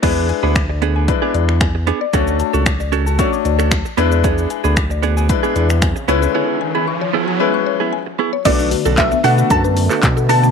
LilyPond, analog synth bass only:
\new Staff \with { instrumentName = "Analog synth bass" } { \clef bass \time 4/4 \key e \mixolydian \tempo 4 = 114 e,8. d,4.~ d,16 e,4. | d,8. cis,4.~ cis,16 d,4 e,8~ | e,8. d,4.~ d,16 e,4 cis,8 | r1 |
b,,8. b,,8. b,8 fis,4 b,4 | }